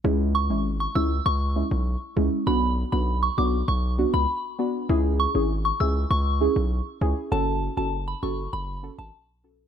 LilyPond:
<<
  \new Staff \with { instrumentName = "Synth bell" } { \time 4/4 \key cis \phrygian \tempo 4 = 99 r8 cis'''16 r8 cis'''16 e'''16 r16 cis'''8. r4 r16 | b''16 r8 b''16 r16 cis'''16 d'''16 r16 cis'''16 r8 b''16 r4 | r8 cis'''16 r8 cis'''16 e'''16 r16 cis'''8. r4 r16 | a''16 r8 a''16 r16 b''16 cis'''16 r16 b''16 r8 a''16 r4 | }
  \new Staff \with { instrumentName = "Synth stab" } { \time 4/4 \key cis \phrygian <gis cis' e'>8. <gis cis' e'>16 r8 <gis cis' e'>16 r8. <gis cis' e'>16 r8. <gis cis' e'>8 | <b d' fis'>8. <b d' fis'>16 r8 <b d' fis'>16 r8. <b d' fis'>16 r8. <b d' fis'>8 | <cis' e' gis'>8. <cis' e' gis'>16 r8 <cis' e' gis'>16 r8. <cis' e' gis'>16 r8. <cis' e' gis'>8 | <cis' fis' a'>8. <cis' fis' a'>16 r8 <cis' fis' a'>16 r8. <cis' fis' a'>16 r8. <cis' fis' a'>8 | }
  \new Staff \with { instrumentName = "808-style bass" } { \clef bass \time 4/4 \key cis \phrygian cis,8. gis,,8. cis,8 cis,8. b,,8 r16 cis,16 r16 | b,,8. b,,8. b,,8 b,,8. cis,16 r4 | cis,8. gis,,8. cis,8 cis,8. b,,8 r16 cis,16 r16 | fis,,8. fis,,8. fis,,8 fis,,8. gis,,16 r4 | }
>>